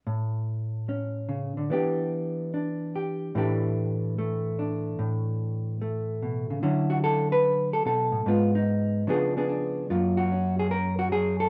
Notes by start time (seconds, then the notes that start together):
0.07 A2
0.89 C#4
1.29 C#3
1.57 D3
1.70 E3 B3 D4 G4
2.54 D4
2.96 G4
3.35 A2 E3 A3 D4 G4
4.19 A3
4.59 D4
4.99 A2
5.82 A3
6.23 B2
6.50 C#3
6.63 D3 F#3 C#4 E4
6.90 F#4
7.04 A4
7.32 B4
7.73 A4
7.86 B2 A4
8.12 A2
8.26 G#2 G#3 B3 F4
8.55 D#4
9.07 C#3 F3 B3 D4 G#4
9.37 B3 D4 G#4
9.49 D4
9.90 F#2 F#3 A#3 F4
10.17 F#4
10.32 C#4
10.59 G#4
10.71 A#4
10.99 F#4
11.12 F#3 G#4
11.40 A4